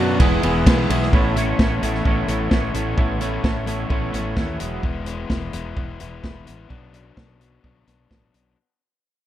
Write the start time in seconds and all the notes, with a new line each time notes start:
Already playing: F#2 B2 F#3 B3
0.00 D4 F#4
0.19 E1 E3 G#3 B3 E4 G#4, kick, ride
0.42 E1 E3 G#3 B3 E4 G#4, ride
0.66 B1 E3 G#3 B3 E4 G#4, kick, snare, ride
0.90 B1 E3 G#3 B3 E4 G#4, ride
1.02 snare
1.13 A1 A2 E3 A3 B3 C#4 E4 A4 C#5, kick
1.35 A2 E3 A3 B3 C#4 E4 A4 C#5, closed hi-hat
1.59 A1 A2 E3 A3 B3 C#4 E4 A4 C#5, kick, snare
1.82 A1 A2 E3 A3 B3 C#4 E4 A4 C#5, closed hi-hat
1.95 snare
2.05 A1 A2 E3 A3 B3 C#4 E4 A4 C#5, kick
2.27 A1 A2 E3 A3 B3 C#4 E4 A4 C#5, closed hi-hat
2.51 A1 A2 E3 A3 B3 C#4 E4 A4 C#5, kick, snare
2.74 A1 A2 E3 A3 B3 C#4 E4 A4 C#5, closed hi-hat
2.97 A1 A2 E3 A3 B3 C#4 E4 A4 C#5, kick
3.20 A2 E3 A3 B3 C#4 E4 A4 C#5, closed hi-hat
3.43 A1 A2 E3 A3 B3 C#4 E4 A4 C#5, kick, snare
3.65 A2 E3 A3 B3 C#4 E4 A4 C#5, closed hi-hat
3.89 A1 A2 E3 A3 B3 C#4 E4 A4 C#5, kick
4.12 A1 A2 E3 A3 B3 C#4 E4 A4 C#5, snare, closed hi-hat
4.36 D#2 A2 E3 A3 B3 C#4 E4 A4 C#5, kick, snare
4.59 E1 E3 F#3 G#3 B3 E4 G#4, closed hi-hat
4.83 E1 E3 G#3 B3 E4, kick
5.06 E3 G#3 B3 E4, closed hi-hat
5.29 E1 E3 G#3 B3 E4, kick, snare
5.53 E1 E3 G#3 B3 E4, closed hi-hat
5.76 E1 E3 G#3 B3 E4, kick
6.00 E1 E3 G#3 B3 E4, closed hi-hat
6.23 E1 E3 G#3 B3 E4, kick, snare
6.45 A1 E3 G#3 B3 E4, closed hi-hat
6.69 B1 B2 F#3 B3 D4, kick
6.93 B2 F#3 B3 D4, closed hi-hat
7.17 B1 B2 F#3 B3 D4, kick, snare
7.39 B2 F#3 B3 D4, closed hi-hat
7.63 B1 B2 F#3 B3 D4, kick
7.87 B1 B2 F#3 B3 D4, snare, closed hi-hat
8.10 A1 B2 F#3 B3 D4, kick, snare
8.34 B1 B2 F#3 B3 D4, closed hi-hat